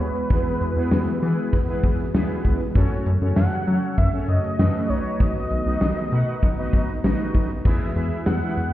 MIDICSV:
0, 0, Header, 1, 6, 480
1, 0, Start_track
1, 0, Key_signature, 4, "major"
1, 0, Tempo, 612245
1, 239, Time_signature, 4, 2, 24, 8
1, 6844, End_track
2, 0, Start_track
2, 0, Title_t, "Analog synth lead"
2, 0, Program_c, 0, 81
2, 0, Note_on_c, 0, 71, 95
2, 1439, Note_off_c, 0, 71, 0
2, 2639, Note_on_c, 0, 78, 111
2, 3088, Note_off_c, 0, 78, 0
2, 3118, Note_on_c, 0, 76, 100
2, 3226, Note_off_c, 0, 76, 0
2, 3357, Note_on_c, 0, 75, 102
2, 3836, Note_on_c, 0, 73, 92
2, 3847, Note_off_c, 0, 75, 0
2, 4077, Note_on_c, 0, 75, 98
2, 4089, Note_off_c, 0, 73, 0
2, 5518, Note_off_c, 0, 75, 0
2, 6479, Note_on_c, 0, 78, 94
2, 6844, Note_off_c, 0, 78, 0
2, 6844, End_track
3, 0, Start_track
3, 0, Title_t, "Analog polysynth"
3, 0, Program_c, 1, 90
3, 0, Note_on_c, 1, 59, 76
3, 0, Note_on_c, 1, 64, 72
3, 0, Note_on_c, 1, 68, 70
3, 0, Note_on_c, 1, 71, 86
3, 123, Note_off_c, 1, 59, 0
3, 123, Note_off_c, 1, 64, 0
3, 123, Note_off_c, 1, 68, 0
3, 123, Note_off_c, 1, 71, 0
3, 237, Note_on_c, 1, 59, 76
3, 238, Note_on_c, 1, 64, 71
3, 238, Note_on_c, 1, 68, 71
3, 238, Note_on_c, 1, 71, 87
3, 512, Note_off_c, 1, 59, 0
3, 512, Note_off_c, 1, 64, 0
3, 512, Note_off_c, 1, 68, 0
3, 512, Note_off_c, 1, 71, 0
3, 599, Note_on_c, 1, 59, 91
3, 599, Note_on_c, 1, 64, 82
3, 600, Note_on_c, 1, 68, 85
3, 600, Note_on_c, 1, 71, 98
3, 872, Note_off_c, 1, 59, 0
3, 873, Note_off_c, 1, 64, 0
3, 873, Note_off_c, 1, 68, 0
3, 873, Note_off_c, 1, 71, 0
3, 958, Note_on_c, 1, 64, 83
3, 958, Note_on_c, 1, 71, 99
3, 959, Note_on_c, 1, 59, 91
3, 959, Note_on_c, 1, 68, 81
3, 1232, Note_off_c, 1, 59, 0
3, 1232, Note_off_c, 1, 64, 0
3, 1232, Note_off_c, 1, 68, 0
3, 1232, Note_off_c, 1, 71, 0
3, 1318, Note_on_c, 1, 68, 82
3, 1318, Note_on_c, 1, 71, 95
3, 1319, Note_on_c, 1, 59, 90
3, 1319, Note_on_c, 1, 64, 81
3, 1592, Note_off_c, 1, 59, 0
3, 1592, Note_off_c, 1, 64, 0
3, 1592, Note_off_c, 1, 68, 0
3, 1592, Note_off_c, 1, 71, 0
3, 1679, Note_on_c, 1, 64, 84
3, 1679, Note_on_c, 1, 71, 102
3, 1680, Note_on_c, 1, 59, 91
3, 1680, Note_on_c, 1, 68, 85
3, 2044, Note_off_c, 1, 59, 0
3, 2044, Note_off_c, 1, 64, 0
3, 2044, Note_off_c, 1, 68, 0
3, 2044, Note_off_c, 1, 71, 0
3, 2160, Note_on_c, 1, 66, 85
3, 2160, Note_on_c, 1, 69, 84
3, 2161, Note_on_c, 1, 61, 91
3, 2161, Note_on_c, 1, 73, 101
3, 2433, Note_off_c, 1, 61, 0
3, 2433, Note_off_c, 1, 66, 0
3, 2433, Note_off_c, 1, 69, 0
3, 2433, Note_off_c, 1, 73, 0
3, 2519, Note_on_c, 1, 61, 75
3, 2519, Note_on_c, 1, 66, 70
3, 2519, Note_on_c, 1, 69, 67
3, 2520, Note_on_c, 1, 73, 83
3, 2792, Note_off_c, 1, 61, 0
3, 2792, Note_off_c, 1, 66, 0
3, 2793, Note_off_c, 1, 69, 0
3, 2793, Note_off_c, 1, 73, 0
3, 2879, Note_on_c, 1, 61, 78
3, 2879, Note_on_c, 1, 69, 70
3, 2879, Note_on_c, 1, 73, 83
3, 2880, Note_on_c, 1, 66, 68
3, 3153, Note_off_c, 1, 61, 0
3, 3153, Note_off_c, 1, 66, 0
3, 3153, Note_off_c, 1, 69, 0
3, 3153, Note_off_c, 1, 73, 0
3, 3239, Note_on_c, 1, 61, 77
3, 3239, Note_on_c, 1, 66, 68
3, 3239, Note_on_c, 1, 69, 69
3, 3239, Note_on_c, 1, 73, 81
3, 3512, Note_off_c, 1, 61, 0
3, 3512, Note_off_c, 1, 66, 0
3, 3512, Note_off_c, 1, 73, 0
3, 3513, Note_off_c, 1, 69, 0
3, 3599, Note_on_c, 1, 61, 77
3, 3599, Note_on_c, 1, 69, 71
3, 3600, Note_on_c, 1, 66, 72
3, 3600, Note_on_c, 1, 71, 86
3, 3830, Note_off_c, 1, 66, 0
3, 3830, Note_off_c, 1, 71, 0
3, 3839, Note_off_c, 1, 61, 0
3, 3839, Note_off_c, 1, 69, 0
3, 3839, Note_on_c, 1, 63, 78
3, 3839, Note_on_c, 1, 71, 75
3, 3839, Note_on_c, 1, 75, 88
3, 3840, Note_on_c, 1, 66, 74
3, 4319, Note_off_c, 1, 63, 0
3, 4319, Note_off_c, 1, 66, 0
3, 4319, Note_off_c, 1, 71, 0
3, 4319, Note_off_c, 1, 75, 0
3, 4438, Note_on_c, 1, 63, 75
3, 4438, Note_on_c, 1, 66, 68
3, 4438, Note_on_c, 1, 71, 68
3, 4438, Note_on_c, 1, 75, 83
3, 4712, Note_off_c, 1, 63, 0
3, 4712, Note_off_c, 1, 66, 0
3, 4712, Note_off_c, 1, 71, 0
3, 4712, Note_off_c, 1, 75, 0
3, 4798, Note_on_c, 1, 63, 90
3, 4798, Note_on_c, 1, 71, 84
3, 4798, Note_on_c, 1, 78, 100
3, 4799, Note_on_c, 1, 66, 85
3, 5072, Note_off_c, 1, 63, 0
3, 5072, Note_off_c, 1, 66, 0
3, 5072, Note_off_c, 1, 71, 0
3, 5072, Note_off_c, 1, 78, 0
3, 5159, Note_on_c, 1, 71, 83
3, 5159, Note_on_c, 1, 75, 99
3, 5160, Note_on_c, 1, 63, 90
3, 5160, Note_on_c, 1, 66, 83
3, 5432, Note_off_c, 1, 71, 0
3, 5433, Note_off_c, 1, 63, 0
3, 5433, Note_off_c, 1, 66, 0
3, 5433, Note_off_c, 1, 75, 0
3, 5518, Note_on_c, 1, 66, 86
3, 5518, Note_on_c, 1, 71, 85
3, 5518, Note_on_c, 1, 75, 104
3, 5519, Note_on_c, 1, 63, 95
3, 5883, Note_off_c, 1, 63, 0
3, 5883, Note_off_c, 1, 66, 0
3, 5883, Note_off_c, 1, 71, 0
3, 5883, Note_off_c, 1, 75, 0
3, 5999, Note_on_c, 1, 68, 88
3, 5999, Note_on_c, 1, 71, 81
3, 5999, Note_on_c, 1, 76, 104
3, 6000, Note_on_c, 1, 64, 95
3, 6181, Note_off_c, 1, 68, 0
3, 6181, Note_off_c, 1, 71, 0
3, 6181, Note_off_c, 1, 76, 0
3, 6182, Note_off_c, 1, 64, 0
3, 6238, Note_on_c, 1, 64, 89
3, 6238, Note_on_c, 1, 68, 84
3, 6238, Note_on_c, 1, 71, 83
3, 6238, Note_on_c, 1, 76, 100
3, 6512, Note_off_c, 1, 64, 0
3, 6512, Note_off_c, 1, 68, 0
3, 6512, Note_off_c, 1, 71, 0
3, 6512, Note_off_c, 1, 76, 0
3, 6599, Note_on_c, 1, 68, 71
3, 6599, Note_on_c, 1, 76, 82
3, 6600, Note_on_c, 1, 64, 73
3, 6600, Note_on_c, 1, 71, 70
3, 6844, Note_off_c, 1, 64, 0
3, 6844, Note_off_c, 1, 68, 0
3, 6844, Note_off_c, 1, 71, 0
3, 6844, Note_off_c, 1, 76, 0
3, 6844, End_track
4, 0, Start_track
4, 0, Title_t, "Analog synth pad"
4, 0, Program_c, 2, 89
4, 0, Note_on_c, 2, 52, 78
4, 0, Note_on_c, 2, 56, 73
4, 0, Note_on_c, 2, 59, 70
4, 0, Note_on_c, 2, 66, 87
4, 2128, Note_off_c, 2, 52, 0
4, 2129, Note_off_c, 2, 56, 0
4, 2129, Note_off_c, 2, 59, 0
4, 2129, Note_off_c, 2, 66, 0
4, 2162, Note_on_c, 2, 57, 73
4, 2163, Note_on_c, 2, 49, 75
4, 2163, Note_on_c, 2, 54, 72
4, 2163, Note_on_c, 2, 66, 89
4, 3824, Note_off_c, 2, 49, 0
4, 3824, Note_off_c, 2, 54, 0
4, 3841, Note_on_c, 2, 51, 82
4, 3841, Note_on_c, 2, 59, 73
4, 5969, Note_off_c, 2, 57, 0
4, 5970, Note_off_c, 2, 66, 0
4, 5978, Note_off_c, 2, 51, 0
4, 5978, Note_off_c, 2, 59, 0
4, 5999, Note_on_c, 2, 52, 79
4, 5999, Note_on_c, 2, 56, 73
4, 5999, Note_on_c, 2, 59, 73
4, 5999, Note_on_c, 2, 66, 84
4, 6844, Note_off_c, 2, 52, 0
4, 6844, Note_off_c, 2, 56, 0
4, 6844, Note_off_c, 2, 59, 0
4, 6844, Note_off_c, 2, 66, 0
4, 6844, End_track
5, 0, Start_track
5, 0, Title_t, "Analog synth bass"
5, 0, Program_c, 3, 38
5, 0, Note_on_c, 3, 39, 88
5, 87, Note_off_c, 3, 39, 0
5, 239, Note_on_c, 3, 40, 102
5, 327, Note_off_c, 3, 40, 0
5, 479, Note_on_c, 3, 40, 107
5, 567, Note_off_c, 3, 40, 0
5, 599, Note_on_c, 3, 40, 92
5, 687, Note_off_c, 3, 40, 0
5, 719, Note_on_c, 3, 40, 103
5, 808, Note_off_c, 3, 40, 0
5, 961, Note_on_c, 3, 52, 101
5, 1049, Note_off_c, 3, 52, 0
5, 1200, Note_on_c, 3, 40, 100
5, 1288, Note_off_c, 3, 40, 0
5, 1439, Note_on_c, 3, 40, 102
5, 1527, Note_off_c, 3, 40, 0
5, 1681, Note_on_c, 3, 39, 99
5, 1768, Note_off_c, 3, 39, 0
5, 1921, Note_on_c, 3, 37, 94
5, 2008, Note_off_c, 3, 37, 0
5, 2160, Note_on_c, 3, 42, 109
5, 2248, Note_off_c, 3, 42, 0
5, 2402, Note_on_c, 3, 42, 97
5, 2489, Note_off_c, 3, 42, 0
5, 2521, Note_on_c, 3, 42, 94
5, 2608, Note_off_c, 3, 42, 0
5, 2641, Note_on_c, 3, 42, 103
5, 2729, Note_off_c, 3, 42, 0
5, 2880, Note_on_c, 3, 54, 93
5, 2968, Note_off_c, 3, 54, 0
5, 3119, Note_on_c, 3, 42, 102
5, 3207, Note_off_c, 3, 42, 0
5, 3359, Note_on_c, 3, 42, 91
5, 3447, Note_off_c, 3, 42, 0
5, 3600, Note_on_c, 3, 42, 107
5, 3688, Note_off_c, 3, 42, 0
5, 3839, Note_on_c, 3, 35, 101
5, 3927, Note_off_c, 3, 35, 0
5, 4079, Note_on_c, 3, 35, 107
5, 4167, Note_off_c, 3, 35, 0
5, 4319, Note_on_c, 3, 35, 89
5, 4407, Note_off_c, 3, 35, 0
5, 4440, Note_on_c, 3, 35, 98
5, 4528, Note_off_c, 3, 35, 0
5, 4558, Note_on_c, 3, 35, 102
5, 4647, Note_off_c, 3, 35, 0
5, 4798, Note_on_c, 3, 47, 94
5, 4887, Note_off_c, 3, 47, 0
5, 5040, Note_on_c, 3, 35, 105
5, 5128, Note_off_c, 3, 35, 0
5, 5279, Note_on_c, 3, 35, 93
5, 5367, Note_off_c, 3, 35, 0
5, 5519, Note_on_c, 3, 33, 101
5, 5607, Note_off_c, 3, 33, 0
5, 5760, Note_on_c, 3, 35, 89
5, 5848, Note_off_c, 3, 35, 0
5, 5999, Note_on_c, 3, 40, 108
5, 6087, Note_off_c, 3, 40, 0
5, 6240, Note_on_c, 3, 40, 107
5, 6328, Note_off_c, 3, 40, 0
5, 6479, Note_on_c, 3, 40, 105
5, 6567, Note_off_c, 3, 40, 0
5, 6719, Note_on_c, 3, 40, 98
5, 6807, Note_off_c, 3, 40, 0
5, 6844, End_track
6, 0, Start_track
6, 0, Title_t, "Drums"
6, 0, Note_on_c, 9, 42, 68
6, 77, Note_off_c, 9, 42, 0
6, 118, Note_on_c, 9, 42, 53
6, 197, Note_off_c, 9, 42, 0
6, 237, Note_on_c, 9, 42, 77
6, 238, Note_on_c, 9, 36, 112
6, 316, Note_off_c, 9, 42, 0
6, 317, Note_off_c, 9, 36, 0
6, 360, Note_on_c, 9, 42, 53
6, 438, Note_off_c, 9, 42, 0
6, 478, Note_on_c, 9, 42, 77
6, 556, Note_off_c, 9, 42, 0
6, 598, Note_on_c, 9, 42, 44
6, 676, Note_off_c, 9, 42, 0
6, 717, Note_on_c, 9, 38, 111
6, 795, Note_off_c, 9, 38, 0
6, 840, Note_on_c, 9, 42, 51
6, 919, Note_off_c, 9, 42, 0
6, 960, Note_on_c, 9, 42, 79
6, 1039, Note_off_c, 9, 42, 0
6, 1081, Note_on_c, 9, 42, 46
6, 1159, Note_off_c, 9, 42, 0
6, 1200, Note_on_c, 9, 36, 90
6, 1200, Note_on_c, 9, 42, 75
6, 1278, Note_off_c, 9, 36, 0
6, 1278, Note_off_c, 9, 42, 0
6, 1320, Note_on_c, 9, 42, 51
6, 1398, Note_off_c, 9, 42, 0
6, 1439, Note_on_c, 9, 36, 91
6, 1439, Note_on_c, 9, 42, 68
6, 1517, Note_off_c, 9, 36, 0
6, 1517, Note_off_c, 9, 42, 0
6, 1561, Note_on_c, 9, 42, 67
6, 1640, Note_off_c, 9, 42, 0
6, 1682, Note_on_c, 9, 38, 120
6, 1760, Note_off_c, 9, 38, 0
6, 1800, Note_on_c, 9, 42, 49
6, 1879, Note_off_c, 9, 42, 0
6, 1920, Note_on_c, 9, 36, 83
6, 1920, Note_on_c, 9, 42, 66
6, 1998, Note_off_c, 9, 36, 0
6, 1998, Note_off_c, 9, 42, 0
6, 2040, Note_on_c, 9, 42, 54
6, 2118, Note_off_c, 9, 42, 0
6, 2159, Note_on_c, 9, 36, 116
6, 2159, Note_on_c, 9, 42, 75
6, 2238, Note_off_c, 9, 36, 0
6, 2238, Note_off_c, 9, 42, 0
6, 2280, Note_on_c, 9, 42, 55
6, 2359, Note_off_c, 9, 42, 0
6, 2399, Note_on_c, 9, 42, 76
6, 2477, Note_off_c, 9, 42, 0
6, 2520, Note_on_c, 9, 42, 45
6, 2598, Note_off_c, 9, 42, 0
6, 2637, Note_on_c, 9, 38, 111
6, 2715, Note_off_c, 9, 38, 0
6, 2760, Note_on_c, 9, 42, 52
6, 2838, Note_off_c, 9, 42, 0
6, 2879, Note_on_c, 9, 42, 80
6, 2958, Note_off_c, 9, 42, 0
6, 3000, Note_on_c, 9, 42, 46
6, 3078, Note_off_c, 9, 42, 0
6, 3119, Note_on_c, 9, 42, 74
6, 3120, Note_on_c, 9, 36, 91
6, 3197, Note_off_c, 9, 42, 0
6, 3198, Note_off_c, 9, 36, 0
6, 3238, Note_on_c, 9, 42, 52
6, 3317, Note_off_c, 9, 42, 0
6, 3358, Note_on_c, 9, 42, 68
6, 3437, Note_off_c, 9, 42, 0
6, 3480, Note_on_c, 9, 42, 67
6, 3559, Note_off_c, 9, 42, 0
6, 3601, Note_on_c, 9, 38, 124
6, 3680, Note_off_c, 9, 38, 0
6, 3719, Note_on_c, 9, 42, 47
6, 3797, Note_off_c, 9, 42, 0
6, 3839, Note_on_c, 9, 42, 65
6, 3917, Note_off_c, 9, 42, 0
6, 3960, Note_on_c, 9, 42, 55
6, 4038, Note_off_c, 9, 42, 0
6, 4078, Note_on_c, 9, 42, 74
6, 4079, Note_on_c, 9, 36, 108
6, 4157, Note_off_c, 9, 36, 0
6, 4157, Note_off_c, 9, 42, 0
6, 4200, Note_on_c, 9, 42, 55
6, 4278, Note_off_c, 9, 42, 0
6, 4317, Note_on_c, 9, 42, 76
6, 4395, Note_off_c, 9, 42, 0
6, 4439, Note_on_c, 9, 42, 45
6, 4518, Note_off_c, 9, 42, 0
6, 4556, Note_on_c, 9, 38, 113
6, 4634, Note_off_c, 9, 38, 0
6, 4679, Note_on_c, 9, 42, 53
6, 4757, Note_off_c, 9, 42, 0
6, 4798, Note_on_c, 9, 42, 79
6, 4877, Note_off_c, 9, 42, 0
6, 4919, Note_on_c, 9, 42, 46
6, 4998, Note_off_c, 9, 42, 0
6, 5039, Note_on_c, 9, 36, 91
6, 5039, Note_on_c, 9, 42, 73
6, 5118, Note_off_c, 9, 36, 0
6, 5118, Note_off_c, 9, 42, 0
6, 5160, Note_on_c, 9, 42, 51
6, 5238, Note_off_c, 9, 42, 0
6, 5279, Note_on_c, 9, 36, 89
6, 5279, Note_on_c, 9, 42, 68
6, 5357, Note_off_c, 9, 36, 0
6, 5357, Note_off_c, 9, 42, 0
6, 5401, Note_on_c, 9, 42, 66
6, 5480, Note_off_c, 9, 42, 0
6, 5521, Note_on_c, 9, 38, 120
6, 5600, Note_off_c, 9, 38, 0
6, 5640, Note_on_c, 9, 42, 49
6, 5719, Note_off_c, 9, 42, 0
6, 5760, Note_on_c, 9, 36, 82
6, 5760, Note_on_c, 9, 46, 65
6, 5838, Note_off_c, 9, 36, 0
6, 5838, Note_off_c, 9, 46, 0
6, 5880, Note_on_c, 9, 42, 52
6, 5958, Note_off_c, 9, 42, 0
6, 6000, Note_on_c, 9, 36, 115
6, 6000, Note_on_c, 9, 49, 94
6, 6078, Note_off_c, 9, 36, 0
6, 6078, Note_off_c, 9, 49, 0
6, 6122, Note_on_c, 9, 42, 54
6, 6201, Note_off_c, 9, 42, 0
6, 6240, Note_on_c, 9, 42, 78
6, 6318, Note_off_c, 9, 42, 0
6, 6359, Note_on_c, 9, 42, 45
6, 6438, Note_off_c, 9, 42, 0
6, 6477, Note_on_c, 9, 38, 111
6, 6556, Note_off_c, 9, 38, 0
6, 6600, Note_on_c, 9, 42, 53
6, 6678, Note_off_c, 9, 42, 0
6, 6720, Note_on_c, 9, 42, 78
6, 6799, Note_off_c, 9, 42, 0
6, 6844, End_track
0, 0, End_of_file